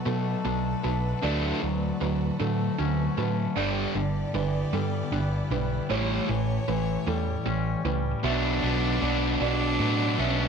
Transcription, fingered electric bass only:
0.06 B2
0.45 B1
0.85 B1
1.23 D2
1.63 D2
2.01 D2
2.41 A2
2.79 D2
3.18 A2
3.56 G1
3.95 G1
4.34 G1
4.73 G2
5.11 G1
5.50 B1
5.90 A1
6.29 A1
6.68 A1
7.07 E2
7.46 A1
7.85 C#2
8.24 B1
8.63 B1
9.02 B1
9.40 B1
9.80 A2
10.19 B1

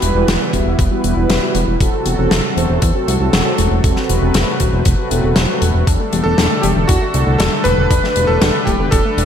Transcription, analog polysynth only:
Already playing: G3 B3 E4 F#4 B4
0.15 G3 B3 E4 F#4 B4
0.53 G3 B3 E4 F#4 E5
0.91 G3 B3 E4 F#4 B4
1.17 G3 B3 E4 F#4 B4
1.42 G3 B3 E4 F#4 B4
1.81 C4 F#4 A4
2.19 C4 F#4 A4
2.57 C4 F#4 C5
2.95 C4 F#4 A4
3.20 C4 F#4 A4
3.46 C4 F#4 A4
3.84 C4 F#4 A4
4.22 C4 F#4 A4
4.60 C4 F#4 C5
4.98 C4 F#4 A4
5.11 C4 F#4 A4
5.49 C4 F#4 A4

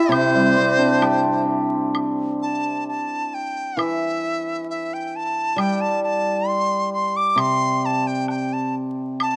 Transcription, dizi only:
Already playing: E5
0.12 C5
2.42 A5
2.89 A5
3.34 G5
3.79 E5
4.70 E5
4.94 G5
5.16 A5
5.60 G5
5.81 A5
6.04 A5
6.48 C6
6.93 C6
7.16 D6
7.39 C6
7.86 A5
8.07 G5
8.30 G5
8.53 A5
9.22 A5

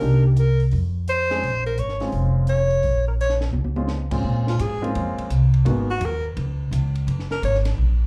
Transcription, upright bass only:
0.02 C2
0.73 F2
1.43 A#1
1.78 G#1
2.13 F1
2.84 A#1
3.53 C#2
4.24 A#2
4.60 G#2
4.96 F2
5.18 muted upright bass stroke
5.30 C2
5.65 G#1
6.01 D#2
6.37 C#2
6.71 C#2
7.07 F#1
7.42 G#1
7.78 A#1

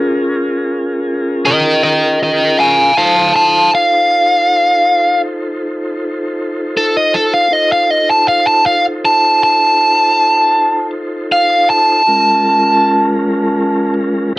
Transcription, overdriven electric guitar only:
1.45 A#4 D#5
1.83 A#4 D#5
2.23 A#4 D#5
2.59 F5 G#5
2.98 F5 A5
3.36 F5 A5
3.75 F5
6.77 A4
6.97 D#5
7.14 A4
7.34 F5
7.53 D#5
7.72 F5
7.91 D#5
8.11 A5
8.28 F5
8.47 A5
8.66 F5
9.05 A5
9.43 A5
11.32 F5
11.70 A5

